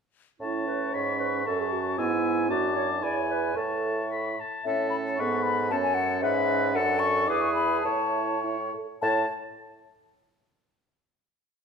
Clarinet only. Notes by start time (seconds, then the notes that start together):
0.40 E4
0.67 B4
0.93 C#5
1.19 B4
1.46 A4
1.60 G#4
1.73 F#4
1.98 E4
2.49 F#4
2.75 C#5
3.03 D5
3.16 C#5
3.30 B4
3.57 A4
5.20 A4
5.71 C#5
6.23 B4
6.75 A4
7.29 B4
7.86 C#5
9.03 C#5